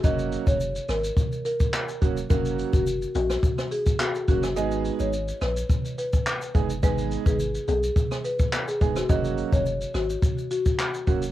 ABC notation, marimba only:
X:1
M:4/4
L:1/16
Q:1/4=106
K:F#mix
V:1 name="Marimba"
d z2 c2 z A2 z2 A z4 z | A z2 F2 z F2 z2 G z F z F z | d z2 c2 z B2 z2 B z4 z | B z2 G2 z G2 z2 B z2 G z F |
d z2 c2 z F2 z2 F z4 z |]